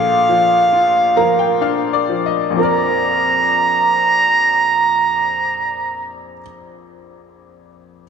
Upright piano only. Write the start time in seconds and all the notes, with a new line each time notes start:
Already playing: A#1 A#2
0.29 F3
0.73 F4
1.16 F3 A#5
1.39 G5
1.61 D4 F5
1.93 D5
2.09 F3
2.26 D#5
2.51 A#1 F2
2.57 F3 C4
2.62 A#4 D5